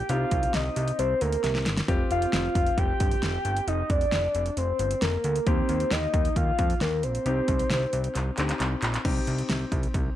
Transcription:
Already playing: soft synth lead G5
0.09 analog synth bass C2, grand piano C4 D#4 G4, soft synth lead F5, closed hi-hat
0.31 analog synth bass C2, kick, closed hi-hat
0.43 closed hi-hat
0.54 analog synth bass C2, soft synth lead D#5, snare, closed hi-hat
0.76 analog synth bass C2, closed hi-hat
0.88 closed hi-hat
0.99 analog synth bass C2, soft synth lead C5, closed hi-hat
1.21 analog synth bass D2, soft synth lead A#4, closed hi-hat
1.32 closed hi-hat
1.44 analog synth bass C2, snare, closed hi-hat
1.55 snare
1.66 analog synth bass G1, snare, closed hi-hat
1.77 snare, closed hi-hat
1.88 analog synth bass F1, grand piano C4 F4 G4, kick, closed hi-hat
2.11 analog synth bass F1, soft synth lead F5, closed hi-hat
2.22 closed hi-hat
2.33 analog synth bass F1, soft synth lead F5, snare, closed hi-hat
2.55 analog synth bass F1, kick, closed hi-hat
2.67 closed hi-hat
2.78 analog synth bass F1, soft synth lead G5, kick, closed hi-hat
3.00 analog synth bass G1, soft synth lead G5, kick, closed hi-hat
3.11 closed hi-hat
3.23 analog synth bass F1, snare, closed hi-hat
3.45 analog synth bass G1, closed hi-hat
3.57 closed hi-hat
3.67 analog synth bass F1, soft synth lead D#5, closed hi-hat
3.90 analog synth bass F1, soft synth lead D5, kick, closed hi-hat
4.01 closed hi-hat
4.12 analog synth bass F1, snare, closed hi-hat
4.35 analog synth bass F1, closed hi-hat
4.46 closed hi-hat
4.57 analog synth bass F1, soft synth lead C5, closed hi-hat
4.79 analog synth bass G1, closed hi-hat
4.91 closed hi-hat
5.02 analog synth bass F1, soft synth lead A#4, snare, closed hi-hat
5.24 analog synth bass D2, closed hi-hat
5.36 closed hi-hat
5.47 analog synth bass D#2, grand piano A#3 D#4 G4, soft synth lead C5, kick, closed hi-hat
5.69 analog synth bass D#2, closed hi-hat
5.80 closed hi-hat
5.91 analog synth bass D#2, soft synth lead D#5, snare, closed hi-hat
6.14 analog synth bass D#2, kick, closed hi-hat
6.25 closed hi-hat
6.36 analog synth bass D#2, soft synth lead F5, kick, closed hi-hat
6.59 analog synth bass F2, kick, closed hi-hat
6.70 closed hi-hat
6.81 analog synth bass D#2, soft synth lead A#4, snare, closed hi-hat
7.03 analog synth bass A#1, soft synth lead C5, closed hi-hat
7.15 closed hi-hat
7.26 analog synth bass C2, grand piano C4 D#4 G4, closed hi-hat
7.48 analog synth bass C2, kick, closed hi-hat
7.59 closed hi-hat
7.70 analog synth bass C2, snare, closed hi-hat
7.93 analog synth bass C2, closed hi-hat
8.04 closed hi-hat
8.15 analog synth bass C2, clap, closed hi-hat
8.38 analog synth bass D2, grand piano C4 D#4 G4, clap, closed hi-hat
8.49 clap, closed hi-hat
8.60 analog synth bass C2, clap, closed hi-hat
8.82 analog synth bass A#1, clap, closed hi-hat
8.94 clap, closed hi-hat
9.05 analog synth bass C2, grand piano C4 D#4 G4, kick, closed hi-hat, crash
9.27 analog synth bass C2, closed hi-hat
9.38 closed hi-hat
9.49 analog synth bass C2, snare, closed hi-hat
9.72 analog synth bass C2, kick, closed hi-hat
9.83 closed hi-hat
9.94 analog synth bass C2, kick, closed hi-hat

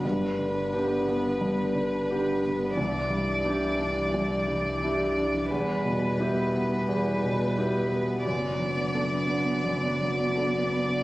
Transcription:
Already playing: cello D3, ambient pad D4
0.04 sub bass G1, felt piano G2, ambient pad G3 B4, violin B4
0.38 felt piano D3
0.73 felt piano B3 D4 G4
1.07 felt piano B3
1.41 felt piano G2
1.75 felt piano D3
2.10 felt piano B3 D4 G4
2.43 felt piano B3
2.76 sub bass C2, felt piano C2, cello E3, ambient pad E4 D5, violin D5
3.10 felt piano G2
3.45 felt piano D4 E4 G4
3.79 felt piano D4
4.14 felt piano C2
4.48 felt piano G2
4.83 felt piano D4 E4 G4
5.17 felt piano D4
5.49 sub bass E1, felt piano E2, ambient pad G3 B4, cello G3, violin B4
5.85 felt piano B2
6.20 felt piano B3 E4 G4
6.55 felt piano B3
6.88 felt piano E2
7.24 felt piano B2
7.57 felt piano B3 E4 G4
7.91 felt piano B3
8.24 sub bass F#1, felt piano F#2, ambient pad A3 D4, cello B3, violin D5
8.60 felt piano F#3
8.94 felt piano B3 D4 A4
9.29 felt piano B3
9.64 felt piano F#2
10.00 felt piano F#3
10.36 felt piano B3 D4 A4
10.73 felt piano B3

